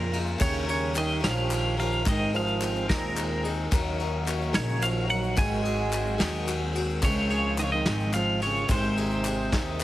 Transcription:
Already playing: F2 A#2 C#3 F3 G#3 A#3 F4 A#4
0.12 G#3 F4 A#4, ride
0.27 shaker
0.38 D#2 C#3 D#3 G3 C#4 G4 A#4 C#5, kick, clap, ride, shaker
0.66 C#3 C#4 G4 A#4, clap, ride
0.70 C#5
0.93 D#3 C#4 G4 A#4, clap, ride, shaker
0.98 D#5
1.09 shaker
1.21 A#1 D#3 F3 C#4 G4 A#4 F5, snare, ride
1.37 shaker
1.49 D#3 C#4 G4 A#4, clap, ride, shaker
1.77 F3 C#4 G4 A#4 F5, ride
1.92 shaker
2.05 G#1 G#2 D#3 G#3 C4 D#4 G#4 D#5, kick, clap, ride, shaker
2.20 clap
2.33 F3 G#3 C4 D#4 G#4 F5, ride
2.48 clap, shaker
2.61 G#3 C4 D#4 G#4, clap, ride, shaker
2.76 clap, shaker
2.89 D#2 G#2 A#2 D#3 G#3 C4 D#4 G#4 A#4, kick, snare, ride
3.16 G#3 C4 D#4 G#4, clap, ride, shaker
3.43 G#3 C4 D#4 G#4, clap, ride
3.71 D#2 D#3 F#3 A#3 C#4 D#4 F#4 A#4, kick, clap, ride, shaker
3.98 C#4 D#4 A#4, clap, ride
4.25 F#3 C#4 D#4 A#4, clap, ride, shaker
4.42 shaker
4.53 A#1 C#3 D#3 F#3 C#4 D#4 A#4 C#5, snare, ride
4.69 shaker
4.80 F3 F#3 C#4 D#4 A#4 F5, clap, ride, shaker
5.08 F#3 C#4 D#4 A#4 F#5, ride
5.23 shaker
5.36 G#1 G#2 D#3 F#3 G#3 C4 F#4 G#4 G#5, kick, clap, ride, shaker
5.62 F#3 C4 F#4 G#4, clap, ride
5.90 F#3 C4 F#4 G#4, clap, ride, shaker
6.06 shaker
6.18 D#2 G#2 D#3 F#3 C4 F#4 G#4, snare, ride
6.35 shaker
6.45 F#3 C4 F#4 G#4, clap, ride, shaker
6.73 F#3 C4 F#4 G#4, ride
6.89 shaker
7.01 C#2 C#3 F3 G#3 C4 F4 G#4 C#5, kick, clap, ride, shaker
7.30 C#3 C4 F4 G#4 C#5, clap, ride
7.58 D#3 G#3 C4 F4 G#4 D#5, clap, ride, shaker
7.64 C#3 C#5
7.72 D#3 D#5, shaker
7.86 G#1 C#3 G#3 C4 F4 G#4, snare, ride
8.00 shaker
8.13 F3 G#3 C4 F4 G#4 F5, clap, ride, shaker
8.40 C#3 C4 F4 G#4 C#5, ride
8.56 shaker
8.68 G#1 G#2 C3 D#3 G#3 C4 D#4 G#4 C5, kick, clap, ride, shaker
8.83 shaker
8.97 G#3 C4 D#4 G#4, ride
9.11 shaker
9.24 G#3 C4 D#4 G#4, clap, ride, shaker
9.52 D#2 G#2 D#3 G#3 C4 D#4 G#4, kick, snare, ride, shaker
9.80 G#3 C4, clap, ride, shaker

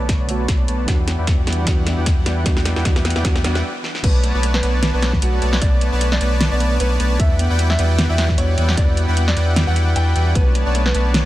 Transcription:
Already playing: B1 D3 A3 B3 F#4 B4 C#5 D5 A5
0.00 D4
0.09 A3, kick, snare, closed hi-hat
0.20 B1 B3 D4 B4 C#5 D5 A5
0.27 D3 A3 B3 C#5, closed hi-hat
0.31 F#4
0.39 F#4
0.48 B1 A3 B3 C#5 D5 A5, kick, snare, closed hi-hat
0.59 D4
0.68 B1 A3 B3 B4 C#5 D5 A5, closed hi-hat
0.79 D4
0.86 E2 E3 G3 B3 D4 E4 F#4 B4 D5 F#5 G5, kick, snare, closed hi-hat
0.90 F#4
0.99 F#4
1.08 B3, snare, closed hi-hat
1.18 E2 E4 B4 D5 F#5 G5
1.27 B3, kick, snare, closed hi-hat
1.38 E4
1.47 E2 B3 E4 B4 D5 F#5 G5, snare, closed hi-hat
1.52 closed hi-hat
1.58 F#4
1.65 E2 E3 G3 B3 D4 E4 F#4 B4 D5 G5, kick, snare, closed hi-hat
1.78 F#4
1.87 B3, snare, closed hi-hat
1.97 E2 E4 B4 D5 F#5 G5
2.06 kick, snare, closed hi-hat
2.17 E4
2.26 E2 B3 E4 B4 D5 F#5 G5, snare, closed hi-hat
2.37 F#4
2.44 E2 E3 G3 B3 D4 E4 D5, kick, snare, closed hi-hat
2.48 F#4
2.57 F#4, snare
2.65 B3, snare, closed hi-hat
2.76 E2 E4 B4 D5 F#5 G5, snare
2.83 E2 E3 G3 B3 D4 E4 B4 F#5 G5, kick, snare, closed hi-hat
2.87 F#4
2.96 F#4, snare
3.05 B3, snare, closed hi-hat
3.10 closed hi-hat
3.16 E2 E4 B4 D5 F#5 G5, snare
3.23 E2 E3 G3 B3 D4 E4 F#4 B4 D5 F#5 G5, kick, snare, closed hi-hat
3.36 F#4, snare
3.43 E2 E3 G3 B3 D4 E4 B4 D5 F#5 G5, snare, closed hi-hat
3.47 F#4
3.55 F#4, snare
3.84 snare
3.95 snare
4.04 B1 A3 B3 D4 B4 C#5 D5 A5, kick, closed hi-hat, crash
4.15 D4
4.23 A3, closed hi-hat
4.34 B1 B3 F#4 B4 C#5 D5 A5
4.43 A3, closed hi-hat
4.54 D4 B4, snare
4.63 B1 A3 B3 B4 C#5 D5 A5, closed hi-hat
4.74 D4
4.83 A3, snare, closed hi-hat
4.93 B1 B3 F#4 B4 C#5 D5 A5
5.02 A3, snare, closed hi-hat
5.13 D4, kick, snare
5.22 B1 A3 B3 F#4 B4 C#5 D5 A5, closed hi-hat
5.33 D4
5.42 B1 A3 B3 B4 C#5 D5 A5, closed hi-hat
5.53 F#4, snare
5.61 B1 A3 B3 B4 C#5 D5, kick, closed hi-hat
5.72 D4
5.81 A3, closed hi-hat
5.92 B1 B3 D4 B4 C#5 D5 A5
6.01 A3, closed hi-hat
6.12 F#4 D5, snare
6.21 B1 A3 B3 B4 C#5 D5 A5, closed hi-hat
6.32 D4
6.41 A3, snare, closed hi-hat
6.51 B1 B3 D4 B4 C#5 D5 A5
6.60 A3, closed hi-hat
6.71 F#4
6.80 B1 A3 B3 B4 C#5 D5 A5, closed hi-hat
6.91 D4
7.00 B1 A3 B3 B4 C#5 D5 A5, closed hi-hat
7.11 D4
7.19 E2 E3 G3 B3 E4 F#4 B4 D5 E5 F#5 G5, kick, closed hi-hat
7.30 F#4
7.39 B3, closed hi-hat
7.50 E2 E4 B4 D5 F#5 G5
7.59 B3, closed hi-hat
7.70 E4 E5, snare
7.79 E2 B3 E4 B4 D5 F#5 G5, closed hi-hat
7.90 F#4
7.98 B3, snare, closed hi-hat
8.09 E2 E4 B4 D5 E5 F#5 G5
8.18 B3, snare, closed hi-hat
8.29 E4, kick, snare
8.38 E2 B3 E4 B4 C#5 D5 F#5 G5, closed hi-hat
8.49 F#4
8.58 E2 B3 E4 B4 D5 F#5 G5, closed hi-hat
8.69 E4, snare
8.77 E2 B3 E4 B4 D5 F#5 G5, kick, closed hi-hat
8.88 E4
8.97 B3, closed hi-hat
9.08 E2 E4 F#4 B4 D5 F#5 G5
9.17 B3, closed hi-hat
9.28 E4 D5, snare
9.37 E2 B3 E4 B4 D5 F#5 G5, closed hi-hat
9.47 E4
9.56 B3, snare, closed hi-hat
9.67 E2 E4 F#4 B4 D5 F#5 G5
9.76 G4, closed hi-hat
9.87 D4
9.96 E2 E4 F#4 B4 D5 F#5 G5, closed hi-hat
10.07 D4
10.16 E2 E4 F#4 B4 D5 F#5 G5, closed hi-hat
10.26 F#4
10.35 B1 A3 B3 B4 C#5 D5 A5, kick, closed hi-hat
10.46 D4
10.55 A3, closed hi-hat
10.66 B1 B3 B4 C#5 D5 A5
10.75 A3, closed hi-hat
10.86 F#4 B4, snare
10.95 B1 A3 B3 B4 C#5 D5 A5, closed hi-hat
11.05 D4
11.14 A3, snare, closed hi-hat

